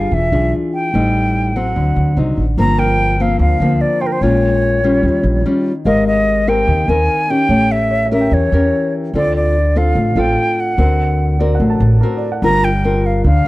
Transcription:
Already playing: D4 F4 G#4 F5
0.11 E1 E3 E5
0.32 B1 D4 F4 G#4
0.74 G5
0.94 A1 A2 G3 C4 D#4
1.56 F#3 C4 F#5
1.76 D2 D3
1.96 D2
2.17 C2 F#3 C4 D#4
2.37 A1
2.57 G1 G2 F3 A#3 C4 A#5
2.78 A#4 G5
3.20 F3 A#3 C4 F5
3.39 D2 D3 F5
3.60 D2 F3 A#3 C4
3.81 D5
4.01 C5 G5
4.07 A#4
4.12 C5
4.21 A#1 A#2 G#3 C#4 F4 C#5
4.84 G3 C#4 F4
5.03 D#2 D#3
5.23 A#1
5.45 G3 C#4 F4
5.85 G#1 G#3 C4 G4 A#4 D#5 F5
6.07 D#5
6.47 C4 G4 A#4 G5
6.67 D#2 D#3
6.88 D#2 C4 A#4 G#5
7.08 A#4
7.30 C#4 G4 G5
7.49 A1 A3 C#5
7.72 E5
7.91 C#5
8.06 E5
8.11 C#4 G4 A#4 E5
8.21 G5
8.31 E2 E3 C#5
8.52 E2 C#4 G4 A#4
9.13 D2 D3 C4 F4 A4 D5
9.36 D5
9.76 C4 F4 A4 F5
9.95 A1 A2
10.15 A1 C4 F4 A4 F5 G5
10.60 F#5
10.78 D2 D3 C4 F#4 A#4
11.39 C4 F#4 A#4 D5
11.55 F#5
11.60 A1 A2
11.70 A5
11.80 A1
12.01 C4 F#4 A#4
12.17 D5
12.32 F#5
12.42 G1 G3 C4 F4 A#4 A#5
12.64 G5
12.84 C4 F4 A#4
13.06 F5
13.24 D2 D3 F5

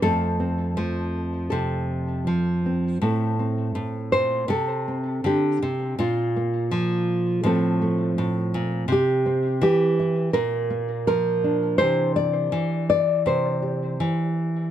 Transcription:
0.02 F2 F3 A3 C4 A4
0.40 C4
0.77 F3 A3
1.50 C3 A4
2.27 F3
2.66 C4
3.02 A2 A3 C4 E4 A4
3.39 C4
3.75 A2
4.12 A#2 C5
4.48 C3 A4
4.88 C4
5.24 D3 G4
5.62 C3
5.99 A#2 F4
6.36 A#3
6.71 F3
7.43 A2 F3 A3 C4 A4
7.82 A3
8.18 A2
8.54 A#2
8.88 C3
8.92 G4
9.26 C4
9.62 E3 G4
10.00 E4
10.33 A#2 A#4
10.70 A#3
11.07 F3 A#4
11.44 D4
11.78 C3 E3 D4 G4 C5
12.16 D5
12.52 E3
12.90 D5
13.26 C3 C5
13.62 G4
14.00 E3

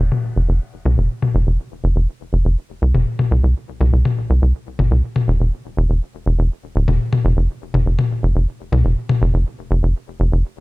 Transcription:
0.00 F1
0.12 high tom
0.36 F1
0.49 F1
0.85 C2, high tom
0.98 F1
1.22 high tom
1.35 F1
1.47 F1
1.84 F1
1.96 F1
2.33 F1
2.45 F1
2.82 C2
2.94 F1, high tom
3.19 high tom
3.31 C2
3.44 C2
3.81 C2, high tom
3.93 C2
4.05 high tom
4.30 C2
4.42 C2
4.79 G1, high tom
4.91 C2
5.16 high tom
5.28 E1
5.40 E1
5.77 E1
5.90 E1
6.26 E1
6.39 E1
6.76 D1
6.88 E1, high tom
7.13 high tom
7.25 F1
7.37 F1
7.74 F1, high tom
7.86 F1
7.99 high tom
8.23 F1
8.35 F1
8.72 C2, high tom
8.85 F1
9.09 high tom
9.22 F1
9.34 F1
9.71 F1
9.83 F1
10.20 F1
10.32 F1

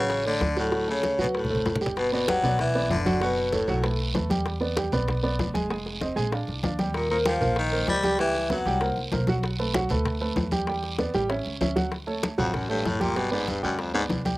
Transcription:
Already playing: A1 C#3 F#3 F#4 C#5 F#5
0.10 high bongo, high conga, long guiro
0.25 D3 A3 A4 D5, high bongo, high conga
0.41 D2, high bongo, low bongo, high conga, short guiro
0.57 A2 F#3 F#4 A4 F#5, high bongo, high conga, short guiro
0.72 F#3 F#4 F#5, high bongo, high conga, long guiro
0.88 C#3 A3 A4 C#5, high conga
1.03 high bongo, high conga, short guiro
1.19 D2 B2 F#3 F#4 B4 F#5, high bongo, short guiro
1.24 low conga
1.34 A2 A4, high bongo, long guiro
1.45 low conga
1.50 A1 A3 A4 C5
1.55 low conga
1.65 G1, high bongo, low bongo, low conga, short guiro
1.76 low conga
1.81 G3 G4 G5, high bongo, short guiro
1.86 low conga
1.97 B2 B4, high bongo, high conga, long guiro
2.12 B2 B3 B4 D5, high bongo, high conga
2.28 F#3 G3 G4 F#5 G5, high bongo, high conga, short guiro
2.43 B1 B3 B4 D5, high bongo, high conga, low conga, short guiro
2.59 E3 E5, high bongo, high conga, low conga, long guiro
2.75 B3 B4 D5, high conga
2.90 F#1 D3 D5, high bongo, low bongo, high conga, short guiro
3.06 F#3 F#4 F#5, high bongo, high conga, short guiro
3.21 B2 F#3 F#4 B4 F#5, high bongo, high conga, long guiro
3.37 high bongo, high conga
3.52 A2 A3 A4 C#5, high bongo, high conga, short guiro
3.67 B1 F#3 F#4 F#5, high bongo, high conga, short guiro
3.83 A3 A4 B4, high bongo, high conga, long guiro
3.99 high conga
4.14 E2 A3 A4 B4, high bongo, low bongo, high conga, short guiro
4.30 G3 G4 G5, high bongo, high conga, short guiro
4.46 high bongo, high conga, long guiro
4.61 B3 B4 D5, high bongo, high conga
4.76 G3 G4 G5, high bongo, high conga, short guiro
4.92 B1 B3 B4 D5, high bongo, high conga, low conga, short guiro
5.08 high bongo, high conga, low conga, long guiro
5.23 B3 B4 D5, high conga
5.39 F1, high bongo, low bongo, high conga, short guiro
5.54 G#3 G#4 G#5, high bongo, high conga, short guiro
5.70 G#3 G#4 G#5, high bongo, high conga, long guiro
5.86 high bongo, high conga
6.01 C4 C5 D#5, high bongo, high conga, short guiro
6.16 A#1 G#3 G#4 G#5, high bongo, high conga, short guiro
6.32 D4 D5 F5, high bongo, high conga, long guiro
6.48 C2, high conga
6.63 D#2 D4 D5 F5, high bongo, low bongo, high conga, short guiro
6.79 G3 G4 G5, high bongo, high conga, short guiro
6.94 A#2 A#4, high bongo, high conga, long guiro
7.10 A#2 A#3 A#4 C5, high bongo, high conga
7.25 F3 G3 G4 F5 G5, high bongo, high conga, short guiro
7.41 A#1 A#3 A#4 C5, high bongo, high conga, low conga, short guiro
7.56 D#3 D#5, high bongo, high conga, long guiro
7.72 A#3 A#4 C5, high conga
7.88 C#2 G3 G5, high bongo, low bongo, high conga, short guiro
8.03 G3 G4 G5, high bongo, high conga, short guiro
8.19 E3 G3 G4 E5 G5, high bongo, high conga, long guiro
8.34 high bongo, high conga
8.50 F#3 B3 B4 C#5 F#5, high bongo, high conga, short guiro
8.65 C2 G3 G4 G5, high bongo, high conga, short guiro
8.81 A#3 A#4 C5, high bongo, high conga, long guiro
8.97 C2, high conga
9.12 B1 A#3 A#4 C5, high bongo, low bongo, high conga, short guiro
9.27 F#3 F#4 F#5, high bongo, high conga, short guiro
9.43 high bongo, high conga, long guiro
9.59 A3 A4 B4, high bongo, high conga
9.74 F#3 F#4 F#5, high bongo, high conga, short guiro
9.89 D2 A3 A4 B4, high bongo, high conga, low conga, short guiro
10.05 high bongo, high conga, low conga, long guiro
10.21 A3 A4 B4, high conga
10.36 E2, high bongo, low bongo, high conga, short guiro
10.51 G3 G4 G5, high bongo, high conga, short guiro
10.67 G3 G4 G5, high bongo, high conga, long guiro
10.83 high bongo, high conga
10.98 B3 B4 D5, high bongo, high conga, short guiro
11.14 A1 G3 G4 G5, high bongo, high conga, short guiro
11.29 C#4 C#5 E5, high bongo, high conga, long guiro
11.46 C#2, high conga
11.61 D2 C#4 C#5 E5, high bongo, low bongo, high conga, short guiro
11.76 F#3 F#4 F#5, high bongo, high conga, short guiro
11.92 high bongo, high conga, long guiro
12.07 A3 A4 C#5, high bongo, high conga
12.23 high bongo, high conga, short guiro
12.38 A1 F2 F#3 F#4 F#5, high bongo, high conga, low conga, short guiro
12.54 F#2, high bongo, high conga, low conga, long guiro
12.69 G2 A3 A4 C#5, high conga
12.85 G1 A2, high bongo, low bongo, high conga, short guiro
13.00 A#2 G3 G4 G5, high bongo, high conga, short guiro
13.15 B2 G3 G4 G5, high bongo, high conga, long guiro
13.31 G#2 B3 B4 D5, high bongo, high conga
13.48 G2, high bongo, high conga, short guiro
13.63 D2 F#2 G3 G4 G5, high bongo, high conga, short guiro
13.79 F2, high bongo, high conga, long guiro
13.94 G#2 B3 B4 D5, high conga
14.09 C2, high bongo, low bongo, high conga, short guiro
14.25 G3 G4 G5, high bongo, high conga, short guiro

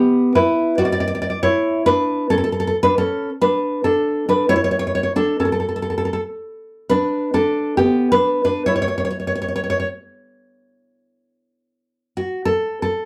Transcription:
Already playing: B3 G4
0.35 E4 B4
0.78 F#4 D5
0.85 D5
0.92 D5
1.00 D5
1.08 D5
1.15 D5
1.22 D5
1.30 D5
1.43 E4 C#5
1.86 D4 B4
2.30 C#4 A4
2.38 A4
2.44 A4
2.52 A4
2.60 A4
2.67 A4
2.83 D4 B4
2.98 C#4 A4
3.41 D4 B4
3.84 D4 A4
4.29 D4 B4
4.49 E4 C#5
4.56 C#5
4.64 C#5
4.71 C#5
4.79 C#5
4.87 C#5
4.95 C#5
5.03 C#5
5.16 D4 A4
5.40 C#4 A4
5.45 A4
5.52 A4
5.60 A4
5.69 A4
5.76 A4
5.82 A4
5.90 A4
5.98 A4
6.05 A4
6.13 A4
6.89 D4 B4
7.34 D4 A4
7.77 B3 G4
8.12 D4 B4
8.44 D4 B4
8.66 E4 C#5
8.76 C#5
8.82 C#5
8.88 C#5
8.98 C#5
9.05 C#5
9.11 C#5
9.20 C#5
9.27 C#5
9.35 C#5
9.42 C#5
9.48 C#5
9.56 C#5
9.64 C#5
9.70 C#5
9.80 C#5
12.17 F#4
12.45 A4
12.82 A4

